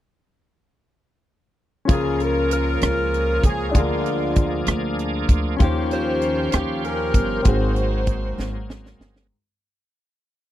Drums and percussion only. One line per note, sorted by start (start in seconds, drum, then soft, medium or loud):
1.89 kick medium
1.89 closed hi-hat medium
2.20 closed hi-hat soft
2.51 closed hi-hat soft
2.81 cross-stick medium
2.81 closed hi-hat medium
3.14 closed hi-hat soft
3.44 kick medium
3.44 closed hi-hat medium
3.75 kick medium
3.75 closed hi-hat medium
4.06 closed hi-hat soft
4.36 kick medium
4.36 closed hi-hat soft
4.66 cross-stick medium
4.66 closed hi-hat medium
4.99 closed hi-hat soft
5.29 kick medium
5.29 closed hi-hat medium
5.60 kick medium
5.60 closed hi-hat medium
5.91 closed hi-hat soft
6.22 closed hi-hat soft
6.52 cross-stick medium
6.52 closed hi-hat medium
6.84 closed hi-hat soft
7.14 kick medium
7.14 closed hi-hat medium
7.45 kick medium
7.45 closed hi-hat medium
7.76 closed hi-hat soft
8.07 kick medium
8.07 closed hi-hat medium
8.39 snare soft
8.70 snare medium
8.86 snare soft
9.01 snare medium
9.16 snare medium